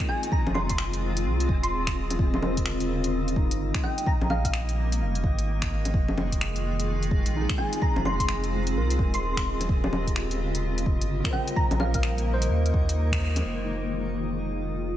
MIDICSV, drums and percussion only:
0, 0, Header, 1, 2, 480
1, 0, Start_track
1, 0, Key_signature, -4, "minor"
1, 0, Tempo, 468750
1, 325, Time_signature, 4, 2, 24, 8
1, 15328, End_track
2, 0, Start_track
2, 0, Title_t, "Drums"
2, 88, Note_on_c, 9, 61, 38
2, 191, Note_off_c, 9, 61, 0
2, 237, Note_on_c, 9, 42, 59
2, 325, Note_on_c, 9, 36, 126
2, 339, Note_off_c, 9, 42, 0
2, 428, Note_off_c, 9, 36, 0
2, 477, Note_on_c, 9, 61, 61
2, 564, Note_off_c, 9, 61, 0
2, 564, Note_on_c, 9, 61, 65
2, 667, Note_off_c, 9, 61, 0
2, 711, Note_on_c, 9, 42, 59
2, 715, Note_on_c, 9, 36, 67
2, 803, Note_on_c, 9, 26, 109
2, 814, Note_off_c, 9, 42, 0
2, 817, Note_off_c, 9, 36, 0
2, 905, Note_off_c, 9, 26, 0
2, 957, Note_on_c, 9, 42, 47
2, 1059, Note_off_c, 9, 42, 0
2, 1195, Note_on_c, 9, 42, 59
2, 1298, Note_off_c, 9, 42, 0
2, 1436, Note_on_c, 9, 42, 49
2, 1525, Note_on_c, 9, 36, 110
2, 1539, Note_off_c, 9, 42, 0
2, 1627, Note_off_c, 9, 36, 0
2, 1674, Note_on_c, 9, 42, 56
2, 1777, Note_off_c, 9, 42, 0
2, 1914, Note_on_c, 9, 36, 60
2, 1916, Note_on_c, 9, 26, 112
2, 1916, Note_on_c, 9, 42, 34
2, 2016, Note_off_c, 9, 36, 0
2, 2019, Note_off_c, 9, 26, 0
2, 2019, Note_off_c, 9, 42, 0
2, 2155, Note_on_c, 9, 42, 60
2, 2155, Note_on_c, 9, 61, 40
2, 2243, Note_on_c, 9, 36, 127
2, 2258, Note_off_c, 9, 42, 0
2, 2258, Note_off_c, 9, 61, 0
2, 2345, Note_off_c, 9, 36, 0
2, 2394, Note_on_c, 9, 61, 58
2, 2483, Note_off_c, 9, 61, 0
2, 2483, Note_on_c, 9, 61, 65
2, 2585, Note_off_c, 9, 61, 0
2, 2633, Note_on_c, 9, 36, 64
2, 2634, Note_on_c, 9, 42, 59
2, 2720, Note_on_c, 9, 26, 106
2, 2735, Note_off_c, 9, 36, 0
2, 2737, Note_off_c, 9, 42, 0
2, 2822, Note_off_c, 9, 26, 0
2, 2871, Note_on_c, 9, 42, 49
2, 2973, Note_off_c, 9, 42, 0
2, 3113, Note_on_c, 9, 42, 59
2, 3216, Note_off_c, 9, 42, 0
2, 3358, Note_on_c, 9, 42, 46
2, 3444, Note_on_c, 9, 36, 114
2, 3461, Note_off_c, 9, 42, 0
2, 3546, Note_off_c, 9, 36, 0
2, 3597, Note_on_c, 9, 42, 58
2, 3699, Note_off_c, 9, 42, 0
2, 3833, Note_on_c, 9, 36, 112
2, 3835, Note_on_c, 9, 26, 115
2, 3835, Note_on_c, 9, 42, 31
2, 3929, Note_on_c, 9, 61, 36
2, 3935, Note_off_c, 9, 36, 0
2, 3937, Note_off_c, 9, 26, 0
2, 3937, Note_off_c, 9, 42, 0
2, 4031, Note_off_c, 9, 61, 0
2, 4075, Note_on_c, 9, 42, 59
2, 4162, Note_on_c, 9, 36, 127
2, 4177, Note_off_c, 9, 42, 0
2, 4264, Note_off_c, 9, 36, 0
2, 4316, Note_on_c, 9, 61, 56
2, 4404, Note_off_c, 9, 61, 0
2, 4404, Note_on_c, 9, 61, 60
2, 4506, Note_off_c, 9, 61, 0
2, 4553, Note_on_c, 9, 36, 63
2, 4556, Note_on_c, 9, 42, 54
2, 4644, Note_on_c, 9, 26, 111
2, 4655, Note_off_c, 9, 36, 0
2, 4658, Note_off_c, 9, 42, 0
2, 4747, Note_off_c, 9, 26, 0
2, 4800, Note_on_c, 9, 42, 46
2, 4903, Note_off_c, 9, 42, 0
2, 5041, Note_on_c, 9, 42, 56
2, 5144, Note_off_c, 9, 42, 0
2, 5277, Note_on_c, 9, 42, 45
2, 5363, Note_on_c, 9, 36, 111
2, 5379, Note_off_c, 9, 42, 0
2, 5465, Note_off_c, 9, 36, 0
2, 5515, Note_on_c, 9, 42, 51
2, 5617, Note_off_c, 9, 42, 0
2, 5753, Note_on_c, 9, 36, 64
2, 5755, Note_on_c, 9, 26, 110
2, 5755, Note_on_c, 9, 42, 32
2, 5855, Note_off_c, 9, 36, 0
2, 5857, Note_off_c, 9, 26, 0
2, 5857, Note_off_c, 9, 42, 0
2, 5993, Note_on_c, 9, 42, 56
2, 5993, Note_on_c, 9, 61, 37
2, 6081, Note_on_c, 9, 36, 124
2, 6096, Note_off_c, 9, 42, 0
2, 6096, Note_off_c, 9, 61, 0
2, 6184, Note_off_c, 9, 36, 0
2, 6231, Note_on_c, 9, 61, 58
2, 6324, Note_off_c, 9, 61, 0
2, 6324, Note_on_c, 9, 61, 61
2, 6426, Note_off_c, 9, 61, 0
2, 6472, Note_on_c, 9, 36, 61
2, 6476, Note_on_c, 9, 42, 52
2, 6567, Note_on_c, 9, 26, 108
2, 6574, Note_off_c, 9, 36, 0
2, 6579, Note_off_c, 9, 42, 0
2, 6669, Note_off_c, 9, 26, 0
2, 6715, Note_on_c, 9, 42, 42
2, 6818, Note_off_c, 9, 42, 0
2, 6959, Note_on_c, 9, 42, 54
2, 7061, Note_off_c, 9, 42, 0
2, 7195, Note_on_c, 9, 42, 44
2, 7283, Note_on_c, 9, 36, 111
2, 7297, Note_off_c, 9, 42, 0
2, 7386, Note_off_c, 9, 36, 0
2, 7433, Note_on_c, 9, 42, 52
2, 7536, Note_off_c, 9, 42, 0
2, 7674, Note_on_c, 9, 36, 103
2, 7675, Note_on_c, 9, 26, 105
2, 7675, Note_on_c, 9, 42, 30
2, 7767, Note_on_c, 9, 61, 36
2, 7776, Note_off_c, 9, 36, 0
2, 7777, Note_off_c, 9, 26, 0
2, 7777, Note_off_c, 9, 42, 0
2, 7869, Note_off_c, 9, 61, 0
2, 7912, Note_on_c, 9, 42, 59
2, 8006, Note_on_c, 9, 36, 116
2, 8015, Note_off_c, 9, 42, 0
2, 8108, Note_off_c, 9, 36, 0
2, 8154, Note_on_c, 9, 61, 62
2, 8247, Note_off_c, 9, 61, 0
2, 8247, Note_on_c, 9, 61, 65
2, 8349, Note_off_c, 9, 61, 0
2, 8394, Note_on_c, 9, 36, 62
2, 8398, Note_on_c, 9, 42, 54
2, 8484, Note_on_c, 9, 26, 101
2, 8497, Note_off_c, 9, 36, 0
2, 8501, Note_off_c, 9, 42, 0
2, 8587, Note_off_c, 9, 26, 0
2, 8639, Note_on_c, 9, 42, 43
2, 8742, Note_off_c, 9, 42, 0
2, 8876, Note_on_c, 9, 42, 55
2, 8979, Note_off_c, 9, 42, 0
2, 9118, Note_on_c, 9, 42, 44
2, 9206, Note_on_c, 9, 36, 107
2, 9221, Note_off_c, 9, 42, 0
2, 9308, Note_off_c, 9, 36, 0
2, 9358, Note_on_c, 9, 42, 55
2, 9460, Note_off_c, 9, 42, 0
2, 9594, Note_on_c, 9, 36, 63
2, 9599, Note_on_c, 9, 26, 99
2, 9599, Note_on_c, 9, 42, 30
2, 9697, Note_off_c, 9, 36, 0
2, 9701, Note_off_c, 9, 26, 0
2, 9701, Note_off_c, 9, 42, 0
2, 9838, Note_on_c, 9, 42, 56
2, 9838, Note_on_c, 9, 61, 38
2, 9924, Note_on_c, 9, 36, 122
2, 9940, Note_off_c, 9, 42, 0
2, 9940, Note_off_c, 9, 61, 0
2, 10026, Note_off_c, 9, 36, 0
2, 10075, Note_on_c, 9, 61, 64
2, 10165, Note_off_c, 9, 61, 0
2, 10165, Note_on_c, 9, 61, 66
2, 10267, Note_off_c, 9, 61, 0
2, 10313, Note_on_c, 9, 36, 59
2, 10317, Note_on_c, 9, 42, 54
2, 10404, Note_on_c, 9, 26, 98
2, 10415, Note_off_c, 9, 36, 0
2, 10420, Note_off_c, 9, 42, 0
2, 10506, Note_off_c, 9, 26, 0
2, 10558, Note_on_c, 9, 42, 45
2, 10661, Note_off_c, 9, 42, 0
2, 10801, Note_on_c, 9, 42, 57
2, 10903, Note_off_c, 9, 42, 0
2, 11037, Note_on_c, 9, 42, 45
2, 11122, Note_on_c, 9, 36, 101
2, 11139, Note_off_c, 9, 42, 0
2, 11225, Note_off_c, 9, 36, 0
2, 11279, Note_on_c, 9, 42, 52
2, 11382, Note_off_c, 9, 42, 0
2, 11513, Note_on_c, 9, 36, 104
2, 11520, Note_on_c, 9, 26, 103
2, 11520, Note_on_c, 9, 42, 31
2, 11604, Note_on_c, 9, 61, 38
2, 11615, Note_off_c, 9, 36, 0
2, 11622, Note_off_c, 9, 26, 0
2, 11622, Note_off_c, 9, 42, 0
2, 11706, Note_off_c, 9, 61, 0
2, 11751, Note_on_c, 9, 42, 55
2, 11842, Note_on_c, 9, 36, 120
2, 11853, Note_off_c, 9, 42, 0
2, 11944, Note_off_c, 9, 36, 0
2, 11991, Note_on_c, 9, 42, 32
2, 11991, Note_on_c, 9, 61, 67
2, 12082, Note_off_c, 9, 61, 0
2, 12082, Note_on_c, 9, 61, 69
2, 12093, Note_off_c, 9, 42, 0
2, 12184, Note_off_c, 9, 61, 0
2, 12228, Note_on_c, 9, 42, 59
2, 12232, Note_on_c, 9, 36, 61
2, 12320, Note_on_c, 9, 26, 109
2, 12330, Note_off_c, 9, 42, 0
2, 12334, Note_off_c, 9, 36, 0
2, 12423, Note_off_c, 9, 26, 0
2, 12474, Note_on_c, 9, 42, 49
2, 12577, Note_off_c, 9, 42, 0
2, 12716, Note_on_c, 9, 42, 60
2, 12818, Note_off_c, 9, 42, 0
2, 12961, Note_on_c, 9, 42, 46
2, 13045, Note_on_c, 9, 36, 104
2, 13063, Note_off_c, 9, 42, 0
2, 13147, Note_off_c, 9, 36, 0
2, 13200, Note_on_c, 9, 42, 58
2, 13302, Note_off_c, 9, 42, 0
2, 13433, Note_on_c, 9, 36, 58
2, 13444, Note_on_c, 9, 26, 103
2, 13444, Note_on_c, 9, 42, 34
2, 13536, Note_off_c, 9, 36, 0
2, 13546, Note_off_c, 9, 26, 0
2, 13546, Note_off_c, 9, 42, 0
2, 13682, Note_on_c, 9, 42, 59
2, 13682, Note_on_c, 9, 61, 41
2, 13784, Note_off_c, 9, 42, 0
2, 13784, Note_off_c, 9, 61, 0
2, 14162, Note_on_c, 9, 42, 47
2, 14264, Note_off_c, 9, 42, 0
2, 14396, Note_on_c, 9, 42, 41
2, 14499, Note_off_c, 9, 42, 0
2, 14638, Note_on_c, 9, 42, 50
2, 14741, Note_off_c, 9, 42, 0
2, 14875, Note_on_c, 9, 42, 40
2, 14977, Note_off_c, 9, 42, 0
2, 15114, Note_on_c, 9, 42, 52
2, 15216, Note_off_c, 9, 42, 0
2, 15328, End_track
0, 0, End_of_file